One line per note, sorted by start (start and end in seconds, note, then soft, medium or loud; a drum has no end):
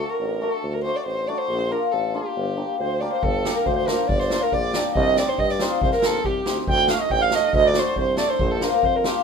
0.00 0.11 A4 medium
0.10 0.44 A#4 medium
0.20 0.46 A1 medium
0.41 0.52 A3 medium
0.41 0.52 D4 soft
0.41 0.52 F#4 medium
0.41 0.75 A4 medium
0.63 0.89 D2 medium
0.74 0.83 A#4 medium
0.84 0.96 A3 soft
0.84 0.96 D4 soft
0.84 0.96 F#4 medium
0.84 0.97 C5 medium
0.96 1.05 D5 medium
1.05 1.32 A1 medium
1.05 1.29 C5 medium
1.27 1.39 A3 medium
1.27 1.39 D4 soft
1.27 1.39 F#4 medium
1.27 1.40 D5 medium
1.38 1.73 C5 medium
1.48 1.75 A#1 loud
1.71 1.82 A#3 medium
1.71 1.82 D4 soft
1.71 1.82 F4 medium
1.71 1.93 A#4 medium
1.92 2.19 A1 medium
1.92 2.17 A4 medium
2.14 2.25 A#3 soft
2.14 2.25 D4 medium
2.14 2.26 F4 medium
2.14 2.80 G4 medium
2.37 2.63 G1 loud
2.57 2.68 A#3 soft
2.57 2.68 D4 soft
2.57 2.69 G4 medium
2.79 3.05 D2 medium
2.79 3.01 C5 medium
2.79 3.02 C5 medium
3.00 3.12 A#3 medium
3.00 3.12 D4 medium
3.00 3.12 G4 medium
3.00 3.14 D5 medium
3.00 3.12 D5 medium
3.12 3.23 C5 medium
3.12 3.25 C5 medium
3.23 3.49 G1 loud
3.23 3.57 A4 medium
3.23 3.56 A4 medium
3.23 kick medium
3.45 3.56 A#3 medium
3.45 3.56 D4 medium
3.45 3.56 G4 medium
3.45 snare medium
3.54 3.65 A#4 medium
3.54 3.68 A#4 medium
3.65 3.92 D2 medium
3.65 3.75 C5 medium
3.65 kick medium
3.76 4.10 C5 medium
3.76 3.89 C5 medium
3.88 3.98 A#3 medium
3.88 3.99 D4 medium
3.88 3.99 F4 medium
3.88 4.08 A#4 medium
3.88 snare medium
4.08 4.35 G1 loud
4.08 4.44 D5 medium
4.08 4.21 D5 medium
4.08 kick medium
4.20 4.44 C5 medium
4.20 snare soft
4.31 4.42 A#3 medium
4.31 4.42 D4 soft
4.31 4.42 F4 medium
4.31 snare medium
4.42 4.55 A#4 medium
4.52 4.78 A#1 medium
4.52 4.85 D5 medium
4.52 4.86 D5 medium
4.52 kick soft
4.74 4.85 A#3 medium
4.74 4.86 D4 medium
4.74 4.86 G4 medium
4.74 snare medium
4.95 5.21 C2 loud
4.95 5.19 D#5 medium
4.95 5.16 D#5 medium
4.95 kick medium
5.16 5.29 C4 soft
5.16 5.29 D#4 soft
5.16 5.29 G4 medium
5.16 5.32 D5 medium
5.16 5.30 D5 medium
5.16 snare medium
5.29 5.41 C5 medium
5.38 5.64 G2 loud
5.38 5.52 D#5 medium
5.38 5.53 D#5 medium
5.38 kick medium
5.49 5.63 D5 medium
5.49 5.81 D5 medium
5.49 snare soft
5.60 5.72 C4 medium
5.60 5.72 D#4 medium
5.60 5.72 F4 medium
5.60 5.82 C5 medium
5.60 snare medium
5.82 5.95 C2 loud
5.82 5.92 C5 medium
5.82 kick medium
5.92 6.26 A#4 medium
5.92 6.07 A#4 medium
5.92 snare soft
6.02 6.24 A#1 medium
6.02 6.14 C4 medium
6.02 6.14 D#4 soft
6.02 6.28 A4 medium
6.02 6.14 A#4 medium
6.02 snare medium
6.24 6.44 C2 medium
6.24 6.57 G4 medium
6.24 6.58 G4 medium
6.24 kick medium
6.46 6.66 D2 medium
6.46 6.57 C4 medium
6.46 6.57 D#4 soft
6.46 6.58 G4 medium
6.46 snare medium
6.67 6.94 D2 loud
6.67 6.91 G5 medium
6.67 6.89 G5 loud
6.67 kick medium
6.88 7.00 A3 medium
6.88 7.00 D4 soft
6.88 7.00 F#4 medium
6.88 7.01 F5 medium
6.88 6.97 F5 medium
6.88 snare medium
6.97 7.10 D#5 medium
6.97 7.02 F5 medium
7.01 7.13 D#5 medium
7.10 7.36 A1 loud
7.10 7.21 G5 medium
7.10 7.24 G5 medium
7.10 kick medium
7.21 7.56 F5 medium
7.21 7.37 F5 medium
7.31 7.43 A3 medium
7.31 7.44 D4 soft
7.31 7.44 A4 medium
7.31 snare medium
7.35 7.56 D#5 medium
7.53 7.80 D2 loud
7.53 7.66 D#5 medium
7.53 7.69 D#5 medium
7.53 kick medium
7.65 7.96 D5 medium
7.65 7.81 D5 medium
7.74 7.86 A3 medium
7.74 7.86 D4 medium
7.74 7.87 F#4 medium
7.74 snare medium
7.79 7.99 C5 medium
7.96 8.23 C2 loud
7.96 8.17 C5 medium
7.96 8.19 C5 medium
7.96 kick medium
8.17 8.29 A3 medium
8.17 8.29 D4 medium
8.17 8.29 A4 medium
8.17 8.31 D5 medium
8.17 8.32 D5 medium
8.17 snare medium
8.29 8.83 C5 medium
8.29 8.53 C5 medium
8.39 8.66 A#1 loud
8.39 kick medium
8.51 8.65 A4 medium
8.61 8.73 A#3 medium
8.61 8.73 D4 medium
8.61 8.73 F4 medium
8.61 8.71 A#4 medium
8.61 snare medium
8.69 8.76 C5 medium
8.74 8.87 A#4 medium
8.83 9.09 F2 medium
8.83 8.97 C5 medium
8.83 8.98 C5 medium
8.83 kick medium
8.95 9.09 A#4 medium
8.95 9.06 A#4 medium
9.04 9.16 A#3 medium
9.04 9.16 D4 medium
9.04 9.16 F4 medium
9.04 9.23 G4 medium
9.04 snare medium